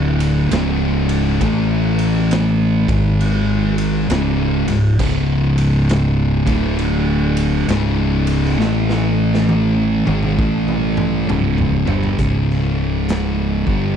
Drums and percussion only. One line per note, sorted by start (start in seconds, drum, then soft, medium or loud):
0.20 ride medium
0.51 snare loud
0.51 ride loud
1.09 ride medium
1.41 kick loud
1.41 ride loud
1.99 ride medium
2.31 snare loud
2.31 ride loud
2.88 kick loud
2.88 ride medium
3.21 ride loud
3.78 ride medium
4.10 snare loud
4.10 ride loud
4.68 ride medium
4.99 kick loud
4.99 crash loud
5.58 ride medium
5.89 snare loud
5.89 ride loud
6.47 kick loud
6.47 ride medium
6.79 ride loud
7.37 ride medium
7.69 snare loud
7.69 ride loud
8.27 ride medium
8.45 snare soft
8.60 snare medium
8.89 snare medium
9.34 snare medium
9.49 high tom medium
10.07 high tom medium
10.23 mid tom medium
10.39 kick loud
10.68 mid tom medium
10.97 mid tom medium
11.29 mid tom loud
11.58 floor tom medium
11.87 floor tom loud
12.03 floor tom medium
12.19 kick loud
12.19 closed hi-hat medium
12.50 snare soft
13.09 snare loud
13.09 closed hi-hat medium
13.67 kick loud